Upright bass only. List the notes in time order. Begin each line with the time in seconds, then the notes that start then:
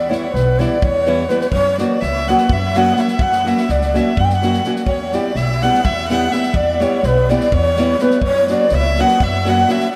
Already playing: E2
0.34 B1
0.84 E2
1.52 F#2
2.02 C#2
2.49 F#2
3.21 F#2
3.69 C#2
4.18 F#2
4.87 E2
5.35 B1
5.85 E2
6.53 E2
7.03 B1
7.52 E2
8.22 F#2
8.71 C#2
9.21 F#2